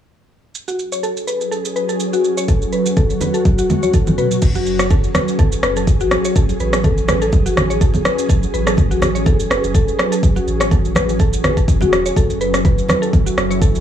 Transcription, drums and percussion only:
0.55 shaker medium
0.68 shaker soft
0.79 shaker soft
0.92 shaker medium
1.04 shaker soft
1.17 shaker soft
1.28 shaker medium
1.41 shaker soft
1.52 shaker medium
1.65 shaker medium
1.76 shaker soft
1.89 shaker soft
2.00 shaker medium
2.13 shaker soft
2.24 shaker soft
2.38 shaker medium
2.48 kick loud
2.48 muted conga soft
2.48 high conga medium
2.48 shaker medium
2.62 shaker soft
2.73 shaker soft
2.86 muted conga soft
2.86 shaker medium
2.97 kick loud
2.97 high conga medium
2.97 low conga loud
2.97 shaker soft
3.10 shaker medium
3.21 muted conga medium
3.21 high conga medium
3.21 low conga medium
3.21 shaker medium
3.34 shaker medium
3.45 kick loud
3.45 high conga medium
3.45 shaker medium
3.58 shaker medium
3.70 high tom medium
3.70 muted conga soft
3.70 low conga loud
3.70 shaker medium
3.83 high conga medium
3.83 shaker medium
3.94 kick loud
3.94 mid tom medium
3.94 shaker medium
4.07 mid tom medium
4.07 muted conga soft
4.07 high conga medium
4.07 low conga loud
4.07 shaker medium
4.18 mid tom medium
4.18 shaker soft
4.31 mid tom medium
4.31 shaker medium
4.42 kick loud
4.42 crash medium
4.42 high conga medium
4.42 shaker medium
4.55 muted conga medium
4.55 shaker soft
4.66 shaker soft
4.79 cross-stick medium
4.79 shaker medium
4.90 kick loud
4.90 muted conga soft
4.90 high conga medium
4.90 low conga medium
4.90 shaker soft
5.04 shaker medium
5.15 cross-stick medium
5.15 high conga medium
5.15 low conga medium
5.15 shaker medium
5.28 shaker medium
5.39 kick loud
5.39 muted conga medium
5.39 low conga loud
5.39 shaker medium
5.52 shaker medium
5.63 cross-stick medium
5.63 shaker soft
5.76 muted conga soft
5.76 shaker soft
5.87 kick loud
5.87 shaker medium
6.00 shaker soft
6.11 cross-stick medium
6.11 muted conga soft
6.11 shaker medium
6.25 shaker medium
6.35 kick loud
6.35 high conga medium
6.35 shaker medium
6.49 muted conga soft
6.49 shaker soft
6.60 shaker soft
6.73 cross-stick medium
6.73 shaker medium
6.83 kick loud
6.83 muted conga soft
6.83 high conga medium
6.83 low conga loud
6.83 shaker medium
6.98 shaker medium
7.08 cross-stick medium
7.08 high conga medium
7.08 low conga medium
7.08 shaker medium
7.22 shaker medium
7.32 kick loud
7.32 muted conga soft
7.32 high conga loud
7.32 shaker medium
7.46 shaker medium
7.57 cross-stick medium
7.57 low conga loud
7.57 shaker medium
7.70 muted conga soft
7.70 shaker medium
7.81 kick loud
7.81 shaker loud
7.94 high conga medium
7.94 low conga loud
7.94 shaker medium
8.05 cross-stick medium
8.05 muted conga medium
8.05 shaker medium
8.19 shaker medium
8.29 kick loud
8.29 high conga medium
8.29 shaker loud
8.43 muted conga soft
8.43 shaker medium
8.54 shaker medium
8.67 cross-stick medium
8.67 shaker medium
8.77 kick loud
8.77 muted conga soft
8.77 high conga medium
8.77 low conga medium
8.77 shaker medium
8.91 shaker medium
9.02 cross-stick medium
9.02 high conga medium
9.02 low conga medium
9.02 shaker medium
9.16 shaker soft
9.26 kick loud
9.26 muted conga medium
9.26 low conga loud
9.26 shaker medium
9.40 shaker loud
9.51 cross-stick medium
9.51 shaker medium
9.64 muted conga soft
9.64 shaker medium
9.75 kick loud
9.75 shaker medium
9.88 shaker medium
9.99 cross-stick medium
9.99 muted conga soft
9.99 shaker medium
10.12 shaker loud
10.23 kick loud
10.23 high conga medium
10.23 shaker medium
10.36 muted conga soft
10.36 shaker soft
10.48 shaker medium
10.61 cross-stick medium
10.61 shaker loud
10.71 kick loud
10.71 muted conga soft
10.71 high conga medium
10.71 low conga medium
10.71 shaker medium
10.85 shaker medium
10.95 cross-stick medium
10.95 high conga medium
10.95 low conga medium
10.95 shaker medium
11.09 shaker medium
11.19 kick loud
11.19 muted conga medium
11.19 high conga medium
11.19 shaker medium
11.33 shaker loud
11.44 cross-stick medium
11.44 low conga medium
11.44 shaker medium
11.57 kick medium
11.57 muted conga soft
11.57 shaker medium
11.68 kick loud
11.68 shaker medium
11.81 high conga medium
11.81 low conga loud
11.81 shaker medium
11.93 cross-stick medium
11.93 muted conga soft
11.93 shaker medium
12.06 shaker medium
12.16 kick loud
12.16 high conga medium
12.16 shaker medium
12.30 muted conga soft
12.30 shaker medium
12.41 shaker medium
12.54 cross-stick medium
12.54 shaker medium
12.65 kick loud
12.65 muted conga soft
12.65 high conga medium
12.65 low conga medium
12.65 shaker medium
12.78 shaker medium
12.88 cross-stick medium
12.88 high conga medium
12.88 low conga medium
12.88 shaker medium
13.03 shaker soft
13.13 kick loud
13.13 muted conga soft
13.13 low conga medium
13.13 shaker medium
13.27 shaker medium
13.38 cross-stick medium
13.38 shaker medium
13.51 muted conga soft
13.51 shaker medium
13.62 kick loud
13.62 shaker medium
13.75 shaker soft

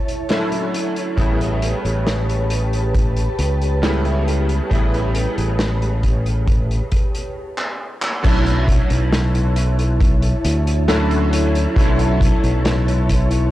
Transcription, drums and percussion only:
0.08 closed hi-hat medium
0.29 snare loud
0.29 closed hi-hat medium
0.52 closed hi-hat medium
0.74 closed hi-hat medium
0.96 closed hi-hat medium
1.18 kick loud
1.18 closed hi-hat medium
1.41 closed hi-hat medium
1.62 closed hi-hat medium
1.85 closed hi-hat medium
2.07 snare loud
2.07 closed hi-hat medium
2.29 closed hi-hat soft
2.50 closed hi-hat medium
2.73 closed hi-hat medium
2.95 kick loud
2.95 closed hi-hat medium
3.16 closed hi-hat medium
3.39 closed hi-hat medium
3.62 closed hi-hat soft
3.83 snare loud
3.83 closed hi-hat medium
4.05 closed hi-hat soft
4.28 closed hi-hat medium
4.49 closed hi-hat medium
4.71 kick loud
4.71 closed hi-hat medium
4.94 closed hi-hat soft
5.15 closed hi-hat medium
5.38 closed hi-hat soft
5.59 snare loud
5.59 closed hi-hat medium
5.82 closed hi-hat soft
6.03 kick medium
6.03 closed hi-hat medium
6.26 closed hi-hat soft
6.47 kick loud
6.47 closed hi-hat medium
6.71 closed hi-hat soft
6.92 kick medium
6.92 closed hi-hat medium
7.15 closed hi-hat medium
7.58 clap medium
8.02 clap medium
8.24 kick loud
8.24 closed hi-hat medium
8.24 crash medium
8.46 closed hi-hat medium
8.68 kick loud
8.68 closed hi-hat loud
8.90 closed hi-hat medium
9.13 snare loud
9.13 closed hi-hat medium
9.35 closed hi-hat medium
9.56 closed hi-hat loud
9.79 closed hi-hat medium
10.01 kick loud
10.01 closed hi-hat medium
10.22 closed hi-hat medium
10.45 closed hi-hat loud
10.67 closed hi-hat medium
10.88 snare loud
10.88 closed hi-hat medium
11.11 closed hi-hat medium
11.33 closed hi-hat loud
11.55 closed hi-hat medium
11.76 kick loud
11.76 closed hi-hat medium
11.99 closed hi-hat medium
12.21 kick loud
12.21 closed hi-hat loud
12.44 closed hi-hat medium
12.65 snare loud
12.65 closed hi-hat medium
12.88 closed hi-hat medium
13.09 kick medium
13.09 closed hi-hat medium
13.31 closed hi-hat medium

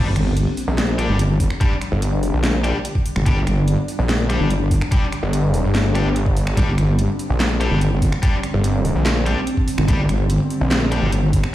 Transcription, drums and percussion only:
0.16 finger snap medium
0.16 closed hi-hat medium
0.37 closed hi-hat medium
0.57 open hi-hat medium
0.78 snare loud
0.78 closed hi-hat medium
0.99 finger snap soft
0.99 closed hi-hat medium
1.19 closed hi-hat medium
1.40 kick medium
1.40 open hi-hat medium
1.50 finger snap medium
1.61 kick loud
1.61 closed hi-hat medium
1.81 finger snap medium
1.81 closed hi-hat medium
2.02 closed hi-hat medium
2.23 open hi-hat medium
2.44 snare loud
2.44 closed hi-hat medium
2.64 finger snap medium
2.64 closed hi-hat medium
2.85 closed hi-hat medium
2.95 kick medium
3.06 open hi-hat medium
3.16 finger snap medium
3.26 kick loud
3.26 closed hi-hat medium
3.47 finger snap medium
3.47 closed hi-hat medium
3.68 closed hi-hat medium
3.88 open hi-hat medium
4.09 snare loud
4.09 closed hi-hat medium
4.30 finger snap medium
4.30 closed hi-hat soft
4.50 closed hi-hat medium
4.71 kick medium
4.71 open hi-hat medium
4.81 finger snap medium
4.92 kick loud
4.92 closed hi-hat medium
5.12 finger snap medium
5.12 closed hi-hat medium
5.33 closed hi-hat medium
5.54 open hi-hat medium
5.75 snare loud
5.75 closed hi-hat medium
5.95 finger snap medium
5.95 closed hi-hat soft
6.16 closed hi-hat medium
6.26 kick medium
6.37 open hi-hat medium
6.47 finger snap medium
6.57 kick loud
6.57 closed hi-hat medium
6.78 finger snap medium
6.78 closed hi-hat medium
6.99 closed hi-hat medium
7.19 open hi-hat medium
7.40 snare loud
7.40 clap medium
7.40 closed hi-hat medium
7.61 finger snap medium
7.61 closed hi-hat medium
7.81 closed hi-hat medium
8.02 kick medium
8.02 open hi-hat medium
8.12 finger snap medium
8.23 kick loud
8.23 closed hi-hat medium
8.43 finger snap medium
8.43 closed hi-hat medium
8.64 closed hi-hat medium
8.85 open hi-hat medium
9.06 snare loud
9.06 clap medium
9.06 closed hi-hat medium
9.26 finger snap medium
9.26 closed hi-hat soft
9.47 closed hi-hat medium
9.57 kick medium
9.68 open hi-hat loud
9.78 finger snap medium
9.88 kick loud
9.88 closed hi-hat medium
10.09 finger snap medium
10.09 closed hi-hat medium
10.30 closed hi-hat medium
10.50 open hi-hat medium
10.71 snare loud
10.71 clap medium
10.71 closed hi-hat medium
10.92 finger snap medium
10.92 closed hi-hat medium
11.12 closed hi-hat medium
11.33 kick medium
11.33 open hi-hat medium
11.44 finger snap medium

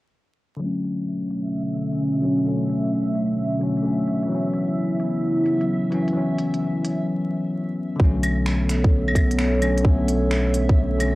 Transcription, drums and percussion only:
0.84 closed hi-hat medium
1.30 closed hi-hat medium
1.77 closed hi-hat medium
1.93 closed hi-hat soft
2.23 closed hi-hat medium
2.39 closed hi-hat soft
2.69 closed hi-hat medium
2.84 closed hi-hat soft
3.15 closed hi-hat soft
3.61 closed hi-hat medium
3.77 closed hi-hat soft
4.08 closed hi-hat medium
4.23 closed hi-hat soft
4.54 closed hi-hat medium
5.00 closed hi-hat medium
5.46 closed hi-hat medium
5.61 closed hi-hat soft
5.92 closed hi-hat medium
6.08 closed hi-hat soft
6.38 closed hi-hat medium
6.54 closed hi-hat soft
6.85 closed hi-hat medium
8.00 kick loud
8.23 closed hi-hat medium
8.23 claves medium
8.46 finger snap medium
8.69 finger snap medium
8.69 closed hi-hat medium
8.84 kick loud
9.08 claves medium
9.15 kick medium
9.15 closed hi-hat medium
9.15 claves medium
9.31 closed hi-hat soft
9.39 finger snap medium
9.62 closed hi-hat medium
9.62 claves medium
9.78 closed hi-hat soft
9.85 kick loud
10.08 closed hi-hat medium
10.31 finger snap medium
10.54 closed hi-hat medium
10.69 kick loud
11.00 closed hi-hat medium
11.00 claves soft

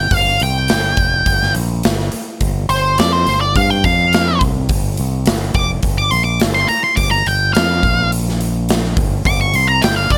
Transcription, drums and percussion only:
0.11 kick loud
0.11 open hi-hat medium
0.40 open hi-hat medium
0.68 snare loud
0.68 open hi-hat medium
0.97 kick loud
0.97 open hi-hat medium
1.26 kick medium
1.26 open hi-hat medium
1.42 snare soft
1.55 open hi-hat medium
1.83 snare loud
1.83 open hi-hat medium
2.00 snare soft
2.12 open hi-hat medium
2.41 kick medium
2.41 open hi-hat medium
2.69 open hi-hat soft
2.98 snare loud
2.98 open hi-hat medium
3.27 open hi-hat medium
3.56 kick loud
3.56 open hi-hat medium
3.84 kick medium
3.84 open hi-hat medium
4.13 snare loud
4.13 open hi-hat medium
4.41 kick loud
4.41 open hi-hat medium
4.69 kick loud
4.69 open hi-hat medium
4.97 open hi-hat medium
5.26 snare loud
5.26 open hi-hat medium
5.54 kick loud
5.54 open hi-hat medium
5.83 kick medium
5.83 open hi-hat medium
6.11 open hi-hat medium
6.40 snare loud
6.40 open hi-hat medium
6.56 snare soft
6.68 open hi-hat medium
6.97 kick medium
6.97 open hi-hat medium
7.26 open hi-hat soft
7.55 snare loud
7.55 open hi-hat medium
7.83 kick loud
7.83 open hi-hat soft
8.12 open hi-hat medium
8.28 snare soft
8.41 open hi-hat medium
8.69 snare loud
8.69 open hi-hat medium
8.85 snare soft
8.97 kick loud
8.97 open hi-hat medium
9.25 kick loud
9.25 open hi-hat medium
9.54 open hi-hat medium
9.82 snare loud
9.82 open hi-hat medium
10.10 kick loud
10.10 open hi-hat medium

